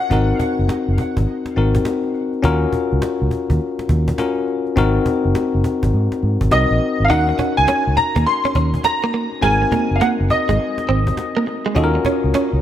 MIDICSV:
0, 0, Header, 1, 7, 480
1, 0, Start_track
1, 0, Tempo, 582524
1, 89, Time_signature, 4, 2, 24, 8
1, 10396, End_track
2, 0, Start_track
2, 0, Title_t, "Grand piano"
2, 0, Program_c, 0, 0
2, 0, Note_on_c, 0, 78, 101
2, 294, Note_off_c, 0, 78, 0
2, 5371, Note_on_c, 0, 75, 85
2, 5778, Note_off_c, 0, 75, 0
2, 5805, Note_on_c, 0, 77, 71
2, 5847, Note_on_c, 0, 78, 98
2, 5848, Note_off_c, 0, 77, 0
2, 6214, Note_off_c, 0, 78, 0
2, 6240, Note_on_c, 0, 80, 92
2, 6545, Note_off_c, 0, 80, 0
2, 6566, Note_on_c, 0, 82, 92
2, 6791, Note_off_c, 0, 82, 0
2, 6810, Note_on_c, 0, 84, 96
2, 7289, Note_on_c, 0, 82, 98
2, 7304, Note_off_c, 0, 84, 0
2, 7736, Note_off_c, 0, 82, 0
2, 7765, Note_on_c, 0, 80, 99
2, 8204, Note_on_c, 0, 77, 65
2, 8219, Note_off_c, 0, 80, 0
2, 8247, Note_off_c, 0, 77, 0
2, 8249, Note_on_c, 0, 78, 89
2, 8303, Note_off_c, 0, 78, 0
2, 8492, Note_on_c, 0, 75, 79
2, 9417, Note_off_c, 0, 75, 0
2, 10396, End_track
3, 0, Start_track
3, 0, Title_t, "Tine electric piano"
3, 0, Program_c, 1, 4
3, 0, Control_c, 1, 64, 127
3, 82, Note_on_c, 1, 60, 62
3, 89, Note_on_c, 1, 63, 60
3, 95, Note_on_c, 1, 66, 58
3, 99, Control_c, 1, 64, 0
3, 103, Note_on_c, 1, 70, 65
3, 235, Control_c, 1, 64, 127
3, 1261, Note_off_c, 1, 60, 0
3, 1265, Note_off_c, 1, 63, 0
3, 1268, Note_off_c, 1, 66, 0
3, 1272, Note_off_c, 1, 70, 0
3, 1287, Note_on_c, 1, 60, 52
3, 1291, Note_on_c, 1, 63, 49
3, 1294, Note_on_c, 1, 66, 50
3, 1299, Note_on_c, 1, 70, 61
3, 1999, Note_on_c, 1, 61, 78
3, 2002, Note_off_c, 1, 66, 0
3, 2006, Note_on_c, 1, 65, 70
3, 2008, Note_off_c, 1, 60, 0
3, 2009, Note_off_c, 1, 70, 0
3, 2010, Note_off_c, 1, 63, 0
3, 2012, Note_on_c, 1, 66, 68
3, 2019, Note_on_c, 1, 70, 83
3, 2021, Control_c, 1, 64, 0
3, 2146, Control_c, 1, 64, 127
3, 3415, Note_off_c, 1, 61, 0
3, 3419, Note_off_c, 1, 65, 0
3, 3422, Note_off_c, 1, 66, 0
3, 3425, Note_off_c, 1, 70, 0
3, 3445, Note_on_c, 1, 61, 59
3, 3449, Note_on_c, 1, 65, 51
3, 3453, Note_on_c, 1, 66, 50
3, 3455, Note_on_c, 1, 70, 60
3, 3921, Note_on_c, 1, 60, 76
3, 3924, Note_off_c, 1, 66, 0
3, 3927, Note_off_c, 1, 61, 0
3, 3928, Note_on_c, 1, 63, 71
3, 3929, Note_off_c, 1, 65, 0
3, 3932, Note_off_c, 1, 70, 0
3, 3934, Note_on_c, 1, 66, 70
3, 3940, Control_c, 1, 64, 0
3, 3941, Note_on_c, 1, 70, 85
3, 4071, Control_c, 1, 64, 127
3, 5336, Note_off_c, 1, 60, 0
3, 5340, Note_off_c, 1, 63, 0
3, 5343, Note_off_c, 1, 66, 0
3, 5346, Note_off_c, 1, 70, 0
3, 5366, Note_on_c, 1, 60, 47
3, 5368, Note_on_c, 1, 63, 45
3, 5371, Note_on_c, 1, 66, 41
3, 5375, Note_on_c, 1, 70, 52
3, 5836, Note_off_c, 1, 63, 0
3, 5841, Note_on_c, 1, 61, 59
3, 5843, Note_off_c, 1, 66, 0
3, 5846, Note_on_c, 1, 63, 60
3, 5847, Note_off_c, 1, 60, 0
3, 5852, Note_off_c, 1, 70, 0
3, 5853, Note_on_c, 1, 66, 57
3, 5859, Control_c, 1, 64, 0
3, 5861, Note_on_c, 1, 70, 64
3, 5981, Control_c, 1, 64, 127
3, 7732, Note_off_c, 1, 61, 0
3, 7735, Note_off_c, 1, 63, 0
3, 7738, Note_off_c, 1, 66, 0
3, 7742, Note_off_c, 1, 70, 0
3, 7758, Note_on_c, 1, 60, 62
3, 7764, Note_on_c, 1, 63, 59
3, 7770, Note_on_c, 1, 66, 55
3, 7778, Note_on_c, 1, 70, 75
3, 7780, Control_c, 1, 64, 0
3, 7952, Control_c, 1, 64, 127
3, 9650, Note_off_c, 1, 60, 0
3, 9654, Note_off_c, 1, 63, 0
3, 9657, Note_off_c, 1, 66, 0
3, 9660, Note_off_c, 1, 70, 0
3, 9680, Note_on_c, 1, 61, 79
3, 9686, Note_on_c, 1, 65, 66
3, 9693, Note_on_c, 1, 66, 67
3, 9698, Control_c, 1, 64, 0
3, 9700, Note_on_c, 1, 69, 66
3, 9754, Note_on_c, 1, 70, 90
3, 9763, Note_off_c, 1, 69, 0
3, 9836, Control_c, 1, 64, 127
3, 10396, Note_off_c, 1, 61, 0
3, 10396, Note_off_c, 1, 65, 0
3, 10396, Note_off_c, 1, 66, 0
3, 10396, Note_off_c, 1, 70, 0
3, 10396, End_track
4, 0, Start_track
4, 0, Title_t, "Clean electric guitar"
4, 0, Program_c, 2, 27
4, 5850, Note_on_c, 2, 63, 84
4, 5964, Note_off_c, 2, 63, 0
4, 6091, Note_on_c, 2, 61, 75
4, 6205, Note_off_c, 2, 61, 0
4, 6332, Note_on_c, 2, 61, 81
4, 6445, Note_off_c, 2, 61, 0
4, 6725, Note_on_c, 2, 58, 71
4, 6788, Note_off_c, 2, 58, 0
4, 6964, Note_on_c, 2, 61, 72
4, 7028, Note_off_c, 2, 61, 0
4, 7052, Note_on_c, 2, 61, 82
4, 7165, Note_off_c, 2, 61, 0
4, 7446, Note_on_c, 2, 58, 81
4, 7509, Note_off_c, 2, 58, 0
4, 7531, Note_on_c, 2, 58, 74
4, 7644, Note_off_c, 2, 58, 0
4, 7772, Note_on_c, 2, 56, 80
4, 7885, Note_off_c, 2, 56, 0
4, 8012, Note_on_c, 2, 58, 77
4, 8125, Note_off_c, 2, 58, 0
4, 8253, Note_on_c, 2, 58, 82
4, 8365, Note_off_c, 2, 58, 0
4, 8645, Note_on_c, 2, 56, 73
4, 8708, Note_off_c, 2, 56, 0
4, 8971, Note_on_c, 2, 60, 75
4, 9084, Note_off_c, 2, 60, 0
4, 9365, Note_on_c, 2, 58, 74
4, 9428, Note_off_c, 2, 58, 0
4, 9607, Note_on_c, 2, 56, 75
4, 9669, Note_off_c, 2, 56, 0
4, 9693, Note_on_c, 2, 63, 87
4, 9806, Note_off_c, 2, 63, 0
4, 9936, Note_on_c, 2, 61, 74
4, 10048, Note_off_c, 2, 61, 0
4, 10176, Note_on_c, 2, 61, 80
4, 10288, Note_off_c, 2, 61, 0
4, 10396, End_track
5, 0, Start_track
5, 0, Title_t, "Fingered electric bass"
5, 0, Program_c, 3, 33
5, 91, Note_on_c, 3, 32, 96
5, 260, Note_off_c, 3, 32, 0
5, 487, Note_on_c, 3, 30, 80
5, 546, Note_off_c, 3, 30, 0
5, 728, Note_on_c, 3, 30, 80
5, 787, Note_off_c, 3, 30, 0
5, 964, Note_on_c, 3, 32, 80
5, 1025, Note_off_c, 3, 32, 0
5, 1294, Note_on_c, 3, 32, 96
5, 1462, Note_off_c, 3, 32, 0
5, 2011, Note_on_c, 3, 39, 101
5, 2180, Note_off_c, 3, 39, 0
5, 2410, Note_on_c, 3, 37, 84
5, 2469, Note_off_c, 3, 37, 0
5, 2650, Note_on_c, 3, 37, 96
5, 2709, Note_off_c, 3, 37, 0
5, 2886, Note_on_c, 3, 39, 88
5, 2946, Note_off_c, 3, 39, 0
5, 3209, Note_on_c, 3, 39, 95
5, 3379, Note_off_c, 3, 39, 0
5, 3932, Note_on_c, 3, 32, 99
5, 4100, Note_off_c, 3, 32, 0
5, 4328, Note_on_c, 3, 30, 76
5, 4387, Note_off_c, 3, 30, 0
5, 4571, Note_on_c, 3, 30, 82
5, 4629, Note_off_c, 3, 30, 0
5, 4805, Note_on_c, 3, 32, 81
5, 4865, Note_off_c, 3, 32, 0
5, 4895, Note_on_c, 3, 44, 103
5, 5002, Note_off_c, 3, 44, 0
5, 5134, Note_on_c, 3, 44, 90
5, 5241, Note_off_c, 3, 44, 0
5, 5283, Note_on_c, 3, 32, 90
5, 5344, Note_off_c, 3, 32, 0
5, 5372, Note_on_c, 3, 36, 88
5, 5480, Note_off_c, 3, 36, 0
5, 5526, Note_on_c, 3, 34, 90
5, 5586, Note_off_c, 3, 34, 0
5, 5768, Note_on_c, 3, 32, 79
5, 5827, Note_off_c, 3, 32, 0
5, 5851, Note_on_c, 3, 39, 101
5, 6020, Note_off_c, 3, 39, 0
5, 6248, Note_on_c, 3, 37, 83
5, 6307, Note_off_c, 3, 37, 0
5, 6488, Note_on_c, 3, 37, 90
5, 6547, Note_off_c, 3, 37, 0
5, 6725, Note_on_c, 3, 39, 93
5, 6785, Note_off_c, 3, 39, 0
5, 7048, Note_on_c, 3, 39, 90
5, 7218, Note_off_c, 3, 39, 0
5, 7770, Note_on_c, 3, 32, 99
5, 7940, Note_off_c, 3, 32, 0
5, 8167, Note_on_c, 3, 30, 82
5, 8227, Note_off_c, 3, 30, 0
5, 8409, Note_on_c, 3, 30, 86
5, 8468, Note_off_c, 3, 30, 0
5, 8645, Note_on_c, 3, 32, 89
5, 8705, Note_off_c, 3, 32, 0
5, 8972, Note_on_c, 3, 32, 88
5, 9141, Note_off_c, 3, 32, 0
5, 9692, Note_on_c, 3, 39, 91
5, 9860, Note_off_c, 3, 39, 0
5, 10088, Note_on_c, 3, 37, 79
5, 10147, Note_off_c, 3, 37, 0
5, 10326, Note_on_c, 3, 37, 97
5, 10386, Note_off_c, 3, 37, 0
5, 10396, End_track
6, 0, Start_track
6, 0, Title_t, "Cajon"
6, 1, Note_on_c, 9, 38, 31
6, 84, Note_off_c, 9, 38, 0
6, 89, Note_on_c, 9, 36, 101
6, 171, Note_off_c, 9, 36, 0
6, 327, Note_on_c, 9, 36, 90
6, 410, Note_off_c, 9, 36, 0
6, 481, Note_on_c, 9, 38, 28
6, 563, Note_off_c, 9, 38, 0
6, 569, Note_on_c, 9, 38, 101
6, 578, Note_off_c, 9, 38, 0
6, 578, Note_on_c, 9, 38, 78
6, 660, Note_off_c, 9, 38, 0
6, 809, Note_on_c, 9, 36, 86
6, 891, Note_off_c, 9, 36, 0
6, 962, Note_on_c, 9, 36, 93
6, 1044, Note_off_c, 9, 36, 0
6, 1049, Note_on_c, 9, 38, 38
6, 1131, Note_off_c, 9, 38, 0
6, 1201, Note_on_c, 9, 38, 66
6, 1283, Note_off_c, 9, 38, 0
6, 1287, Note_on_c, 9, 38, 38
6, 1369, Note_off_c, 9, 38, 0
6, 1439, Note_on_c, 9, 36, 99
6, 1522, Note_off_c, 9, 36, 0
6, 1526, Note_on_c, 9, 38, 96
6, 1535, Note_off_c, 9, 38, 0
6, 1535, Note_on_c, 9, 38, 76
6, 1617, Note_off_c, 9, 38, 0
6, 1771, Note_on_c, 9, 38, 38
6, 1853, Note_off_c, 9, 38, 0
6, 1922, Note_on_c, 9, 38, 32
6, 2004, Note_off_c, 9, 38, 0
6, 2008, Note_on_c, 9, 36, 106
6, 2090, Note_off_c, 9, 36, 0
6, 2246, Note_on_c, 9, 36, 86
6, 2329, Note_off_c, 9, 36, 0
6, 2401, Note_on_c, 9, 38, 29
6, 2484, Note_off_c, 9, 38, 0
6, 2488, Note_on_c, 9, 38, 106
6, 2496, Note_off_c, 9, 38, 0
6, 2496, Note_on_c, 9, 38, 80
6, 2579, Note_off_c, 9, 38, 0
6, 2729, Note_on_c, 9, 36, 83
6, 2811, Note_off_c, 9, 36, 0
6, 2883, Note_on_c, 9, 36, 89
6, 2965, Note_off_c, 9, 36, 0
6, 2970, Note_on_c, 9, 38, 38
6, 3053, Note_off_c, 9, 38, 0
6, 3124, Note_on_c, 9, 38, 69
6, 3207, Note_off_c, 9, 38, 0
6, 3207, Note_on_c, 9, 36, 94
6, 3289, Note_off_c, 9, 36, 0
6, 3360, Note_on_c, 9, 36, 99
6, 3443, Note_off_c, 9, 36, 0
6, 3446, Note_on_c, 9, 38, 89
6, 3455, Note_off_c, 9, 38, 0
6, 3455, Note_on_c, 9, 38, 75
6, 3537, Note_off_c, 9, 38, 0
6, 3690, Note_on_c, 9, 38, 40
6, 3772, Note_off_c, 9, 38, 0
6, 3843, Note_on_c, 9, 38, 35
6, 3925, Note_off_c, 9, 38, 0
6, 3929, Note_on_c, 9, 36, 109
6, 4012, Note_off_c, 9, 36, 0
6, 4168, Note_on_c, 9, 36, 93
6, 4250, Note_off_c, 9, 36, 0
6, 4321, Note_on_c, 9, 38, 29
6, 4403, Note_off_c, 9, 38, 0
6, 4409, Note_on_c, 9, 38, 102
6, 4418, Note_off_c, 9, 38, 0
6, 4418, Note_on_c, 9, 38, 80
6, 4500, Note_off_c, 9, 38, 0
6, 4649, Note_on_c, 9, 36, 97
6, 4731, Note_off_c, 9, 36, 0
6, 4803, Note_on_c, 9, 36, 96
6, 4885, Note_off_c, 9, 36, 0
6, 4890, Note_on_c, 9, 38, 35
6, 4973, Note_off_c, 9, 38, 0
6, 5042, Note_on_c, 9, 38, 67
6, 5124, Note_off_c, 9, 38, 0
6, 5131, Note_on_c, 9, 38, 38
6, 5214, Note_off_c, 9, 38, 0
6, 5281, Note_on_c, 9, 36, 94
6, 5364, Note_off_c, 9, 36, 0
6, 5368, Note_on_c, 9, 38, 92
6, 5377, Note_off_c, 9, 38, 0
6, 5377, Note_on_c, 9, 38, 75
6, 5459, Note_off_c, 9, 38, 0
6, 5611, Note_on_c, 9, 38, 42
6, 5693, Note_off_c, 9, 38, 0
6, 5764, Note_on_c, 9, 38, 33
6, 5846, Note_off_c, 9, 38, 0
6, 5849, Note_on_c, 9, 36, 101
6, 5932, Note_off_c, 9, 36, 0
6, 6087, Note_on_c, 9, 36, 93
6, 6170, Note_off_c, 9, 36, 0
6, 6327, Note_on_c, 9, 38, 100
6, 6335, Note_off_c, 9, 38, 0
6, 6335, Note_on_c, 9, 38, 75
6, 6418, Note_off_c, 9, 38, 0
6, 6569, Note_on_c, 9, 36, 86
6, 6651, Note_off_c, 9, 36, 0
6, 6722, Note_on_c, 9, 36, 94
6, 6805, Note_off_c, 9, 36, 0
6, 6961, Note_on_c, 9, 38, 66
6, 7043, Note_off_c, 9, 38, 0
6, 7046, Note_on_c, 9, 36, 93
6, 7129, Note_off_c, 9, 36, 0
6, 7200, Note_on_c, 9, 36, 93
6, 7282, Note_off_c, 9, 36, 0
6, 7285, Note_on_c, 9, 38, 94
6, 7293, Note_off_c, 9, 38, 0
6, 7293, Note_on_c, 9, 38, 78
6, 7376, Note_off_c, 9, 38, 0
6, 7530, Note_on_c, 9, 38, 41
6, 7613, Note_off_c, 9, 38, 0
6, 7680, Note_on_c, 9, 38, 33
6, 7763, Note_off_c, 9, 38, 0
6, 7768, Note_on_c, 9, 36, 104
6, 7850, Note_off_c, 9, 36, 0
6, 8007, Note_on_c, 9, 36, 98
6, 8089, Note_off_c, 9, 36, 0
6, 8161, Note_on_c, 9, 38, 28
6, 8243, Note_off_c, 9, 38, 0
6, 8248, Note_on_c, 9, 38, 98
6, 8257, Note_off_c, 9, 38, 0
6, 8257, Note_on_c, 9, 38, 76
6, 8340, Note_off_c, 9, 38, 0
6, 8489, Note_on_c, 9, 36, 88
6, 8571, Note_off_c, 9, 36, 0
6, 8642, Note_on_c, 9, 36, 84
6, 8725, Note_off_c, 9, 36, 0
6, 8882, Note_on_c, 9, 38, 68
6, 8964, Note_off_c, 9, 38, 0
6, 9120, Note_on_c, 9, 36, 98
6, 9203, Note_off_c, 9, 36, 0
6, 9207, Note_on_c, 9, 38, 96
6, 9216, Note_off_c, 9, 38, 0
6, 9216, Note_on_c, 9, 38, 75
6, 9298, Note_off_c, 9, 38, 0
6, 9449, Note_on_c, 9, 38, 43
6, 9531, Note_off_c, 9, 38, 0
6, 9603, Note_on_c, 9, 38, 31
6, 9686, Note_off_c, 9, 38, 0
6, 9689, Note_on_c, 9, 36, 103
6, 9771, Note_off_c, 9, 36, 0
6, 9927, Note_on_c, 9, 36, 93
6, 10010, Note_off_c, 9, 36, 0
6, 10082, Note_on_c, 9, 38, 28
6, 10164, Note_off_c, 9, 38, 0
6, 10169, Note_on_c, 9, 38, 103
6, 10178, Note_off_c, 9, 38, 0
6, 10178, Note_on_c, 9, 38, 80
6, 10261, Note_off_c, 9, 38, 0
6, 10396, End_track
7, 0, Start_track
7, 0, Title_t, "Muted clean electric guitar strokes"
7, 6006, Note_on_c, 9, 29, 41
7, 6088, Note_off_c, 9, 29, 0
7, 6573, Note_on_c, 9, 29, 39
7, 6655, Note_off_c, 9, 29, 0
7, 6811, Note_on_c, 9, 29, 45
7, 6893, Note_off_c, 9, 29, 0
7, 7291, Note_on_c, 9, 29, 48
7, 7373, Note_off_c, 9, 29, 0
7, 7926, Note_on_c, 9, 29, 44
7, 8008, Note_off_c, 9, 29, 0
7, 8490, Note_on_c, 9, 29, 43
7, 8572, Note_off_c, 9, 29, 0
7, 9452, Note_on_c, 9, 29, 43
7, 9535, Note_off_c, 9, 29, 0
7, 9848, Note_on_c, 9, 29, 46
7, 9931, Note_off_c, 9, 29, 0
7, 10396, End_track
0, 0, End_of_file